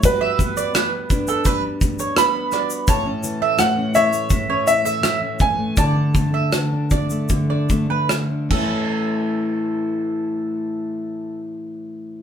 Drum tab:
CC |----------------|----------------|--------------x-|----------------|
SH |x-xxx-xxx-xxx-xx|x-x-x-xxx-xxx-x-|x-x-x-xxx-x-x---|----------------|
SD |----r-------r-r-|----r-------r---|----r-------r---|----------------|
BD |o-o---o-o-o-----|o-------o-----o-|o-o---o-o-o---o-|----------------|